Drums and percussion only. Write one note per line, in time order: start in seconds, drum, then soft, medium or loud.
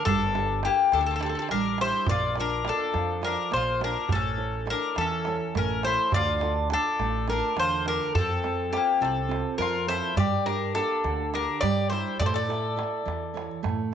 0.06 darbuka dum medium
0.21 darbuka tek soft
0.35 darbuka tek medium
0.63 darbuka tek medium
0.78 darbuka tek soft
0.92 darbuka tek medium
1.21 darbuka tek medium
1.49 darbuka tek medium
1.65 darbuka tek soft
1.78 darbuka tek medium
1.93 darbuka tek soft
2.06 darbuka dum loud
2.21 darbuka tek soft
2.35 darbuka tek medium
2.65 darbuka tek medium
2.79 darbuka tek soft
2.94 darbuka tek medium
3.23 darbuka tek medium
3.52 darbuka tek medium
3.67 darbuka tek soft
3.81 darbuka tek medium
3.95 darbuka tek soft
4.09 darbuka dum medium
4.24 darbuka tek soft
4.67 darbuka tek medium
4.96 darbuka tek medium
5.11 darbuka tek soft
5.25 darbuka tek medium
5.41 darbuka tek soft
5.55 darbuka tek medium
5.55 darbuka dum medium
5.83 darbuka tek medium
6.12 darbuka dum medium
6.27 darbuka tek soft
6.41 darbuka tek medium
6.70 darbuka tek medium
6.84 darbuka tek soft
7.00 darbuka tek medium
7.28 darbuka tek medium
7.57 darbuka tek medium
7.71 darbuka tek soft
7.86 darbuka tek medium
8.00 darbuka tek soft
8.15 darbuka dum medium
8.30 darbuka tek soft
8.44 darbuka tek medium
8.73 darbuka tek medium
8.89 darbuka tek soft
9.03 darbuka tek medium
9.31 darbuka tek medium
9.61 darbuka tek medium
9.75 darbuka tek soft
9.89 darbuka tek medium
10.04 darbuka tek soft
10.18 darbuka dum medium
10.33 darbuka tek soft
10.47 darbuka tek medium
10.75 darbuka tek medium
10.91 darbuka tek soft
11.04 darbuka tek medium
11.34 darbuka tek medium
11.63 darbuka tek medium
11.77 darbuka tek soft
11.92 darbuka tek medium
12.06 darbuka tek soft
12.21 darbuka dum medium
12.36 darbuka tek soft
12.50 darbuka tek medium
12.79 darbuka tek medium
13.08 darbuka tek medium
13.37 darbuka tek medium
13.51 darbuka tek soft
13.64 darbuka tek medium
13.64 darbuka dum medium
13.79 darbuka tek soft